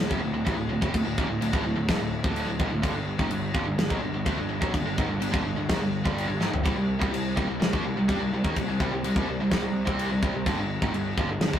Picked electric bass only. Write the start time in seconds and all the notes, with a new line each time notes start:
0.11 F#1
0.23 D1
0.34 D1
0.47 A1
0.58 D1
0.70 D1
0.82 F#1
0.94 D1
1.06 D1
1.18 D#1
1.30 D1
1.41 D1
1.53 D1
1.64 D1
1.76 D1
1.88 D#1
1.99 D1
2.24 D1
2.47 D1
2.60 D#1
2.70 D1
2.83 G1
2.94 G1
3.19 G#1
3.28 G1
3.54 G1
3.65 G1
3.77 G1
3.90 B1
4.01 G1
4.13 G1
4.26 D2
4.37 G1
4.49 G1
4.62 B1
4.74 G1
4.85 G1
4.97 G#1
5.08 G1
5.20 G1
5.33 G1
5.44 G1
5.56 G1
5.69 G#1
5.80 G1
6.05 G1
6.28 G1
6.40 G#1
6.52 G1
6.65 C2
6.75 C2
7.01 C2
7.12 C2
7.37 C2
7.47 C2
7.60 C2
7.73 D#2
7.84 C2
7.96 C2
8.08 G2
8.19 C2
8.32 C2
8.44 D#2
8.56 C2
8.68 C2
8.80 C2
8.92 C2
9.03 C2
9.16 C2
9.28 C2
9.40 C2
9.51 C2
9.64 C2
9.87 C2
10.10 C2
10.22 C2
10.34 C2
10.46 G1
10.57 G1
10.82 G#1
10.92 G1
11.17 G1
11.28 G1
11.39 G1
11.53 B1